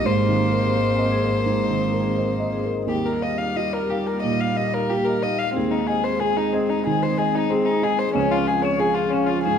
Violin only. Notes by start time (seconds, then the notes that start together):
0.06 C5
2.89 G4
3.06 A#4
3.22 D#5
3.38 F5
3.57 D#5
3.73 A#4
3.90 G4
4.07 A#4
4.23 D#5
4.41 F5
4.57 D#5
4.74 A#4
4.90 G4
5.05 A#4
5.22 D#5
5.39 F5
5.55 C4
5.71 D#4
5.87 G#4
6.04 C5
6.20 G#4
6.37 D#4
6.52 C4
6.69 D#4
6.87 G#4
7.03 C5
7.18 G#4
7.35 D#4
7.50 C4
7.66 D#4
7.83 G#4
7.99 C5
8.14 C#4
8.31 F4
8.47 G#4
8.63 C#5
8.79 G#4
8.94 F4
9.10 C#4
9.27 F4
9.44 G#4